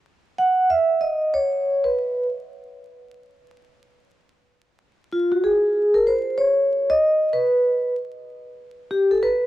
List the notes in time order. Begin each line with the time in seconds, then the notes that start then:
0.38 F#5
0.70 E5
1.01 D#5
1.34 C#5
1.84 B4
5.12 F4
5.32 F#4
5.44 G#4
5.94 A#4
6.07 C5
6.38 C#5
6.90 D#5
7.33 B4
8.91 G4
9.11 A4
9.23 B4